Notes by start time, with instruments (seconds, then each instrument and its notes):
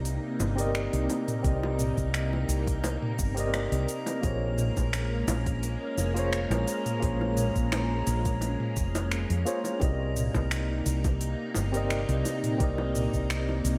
Already playing: fretless electric bass C2, string machine C3 A#3 D#4, tine electric piano C4 G4 A#4 D5 D#5, synth texture A#5
0.05 open hi-hat, cabasa
0.40 fretless electric bass G1, high bongo, cabasa
0.56 tine electric piano C4 G4 A#4, open hi-hat, cabasa
0.60 tine electric piano D5 D#5
0.75 finger snap, open hi-hat, cabasa
0.93 fretless electric bass C2, open hi-hat
1.10 open hi-hat, high bongo, cabasa
1.28 mid tom, open hi-hat, cabasa
1.42 fretless electric bass C2, tine electric piano C4 G4 A#4, kick, open hi-hat, cabasa
1.46 tine electric piano D5 D#5
1.63 high bongo
1.79 mid tom, cabasa
1.98 fretless electric bass C2, kick, cabasa
2.14 finger snap, open hi-hat, cabasa
2.33 high bongo
2.49 fretless electric bass C2, open hi-hat, cabasa
2.67 kick, open hi-hat, cabasa
2.84 open hi-hat, high bongo, cabasa
3.02 mid tom
3.19 fretless electric bass G1, kick, cabasa
3.35 tine electric piano C4 G4 A#4, open hi-hat, cabasa
3.39 tine electric piano D5 D#5
3.54 finger snap, open hi-hat, high bongo, cabasa
3.72 fretless electric bass C2, open hi-hat
3.89 open hi-hat, cabasa
4.06 open hi-hat, high bongo, cabasa
4.21 fretless electric bass A#1, string machine G#3 C#4, tine electric piano A#3 F4 G#4 C5, kick, open hi-hat, cabasa
4.26 tine electric piano C#5
4.58 mid tom, cabasa
4.77 fretless electric bass A#1, kick, high bongo, cabasa
4.93 finger snap, open hi-hat, cabasa
5.28 fretless electric bass A#1, open hi-hat, high bongo, cabasa
5.46 kick, open hi-hat, cabasa
5.63 open hi-hat, cabasa
5.98 fretless electric bass F1, high bongo, cabasa
6.14 tine electric piano A#3 F4 G#4 C5, open hi-hat, cabasa
6.19 tine electric piano C#5
6.33 finger snap, open hi-hat, cabasa
6.50 fretless electric bass A#1, open hi-hat, high bongo
6.68 open hi-hat, cabasa
6.86 mid tom, open hi-hat, cabasa
7.00 fretless electric bass A#1, tine electric piano A#3 F4 G#4 C5, kick, open hi-hat, cabasa
7.05 tine electric piano C#5
7.21 high bongo
7.37 mid tom, open hi-hat, cabasa
7.56 fretless electric bass A#1, kick, cabasa
7.72 finger snap, open hi-hat, high bongo, cabasa
8.07 fretless electric bass A#1, open hi-hat, cabasa
8.25 kick, open hi-hat, cabasa
8.41 open hi-hat, high bongo, cabasa
8.60 mid tom
8.77 fretless electric bass F1, kick, cabasa
8.95 open hi-hat, high bongo, cabasa
9.12 finger snap, open hi-hat, cabasa
9.30 fretless electric bass F2, open hi-hat
9.45 tine electric piano A#3 F4 G#4 C5 C#5, open hi-hat, cabasa
9.64 open hi-hat, high bongo, cabasa
9.79 fretless electric bass C2, string machine C3 A#3 D#4, tine electric piano C4 G4 A#4 D5, kick, open hi-hat, high bongo, cabasa
9.84 tine electric piano D#5
10.16 mid tom, cabasa
10.35 fretless electric bass C2, kick, high bongo, cabasa
10.51 finger snap, open hi-hat, cabasa
10.86 fretless electric bass C2, open hi-hat, cabasa
11.04 kick, open hi-hat, high bongo, cabasa
11.21 open hi-hat, cabasa
11.55 fretless electric bass G1, high bongo, cabasa
11.72 tine electric piano C4 G4 A#4 D5, open hi-hat, cabasa
11.77 tine electric piano D#5
11.90 finger snap, open hi-hat, cabasa
12.09 fretless electric bass C2, open hi-hat
12.25 open hi-hat, high bongo, cabasa
12.44 mid tom, open hi-hat, cabasa
12.58 fretless electric bass C2, tine electric piano C4 G4 A#4 D5, kick, open hi-hat, cabasa
12.64 tine electric piano D#5
12.78 high bongo
12.95 mid tom, cabasa
13.14 fretless electric bass C2, kick, cabasa
13.30 finger snap, open hi-hat, cabasa
13.49 high bongo
13.65 fretless electric bass C2, open hi-hat, cabasa